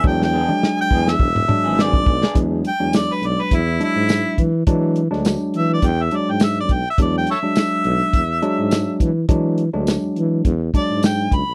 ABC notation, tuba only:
X:1
M:4/4
L:1/16
Q:"Swing 16ths" 1/4=104
K:Emix
V:1 name="Tuba" clef=bass
E,,3 z2 E,,, E,,2 E,,,2 z G,,,3 B,,, z | E,,2 z E,,2 z B,,, z E,,2 z G,,2 z E,2 | E,3 D,,2 E,, E,2 E,,2 E,, G,,3 B,,, z | E,,2 z4 B,,, z E,,2 z G,,2 z E,2 |
E,3 D,,2 E,, E,2 E,,2 E,, G,,3 C,, B,,, |]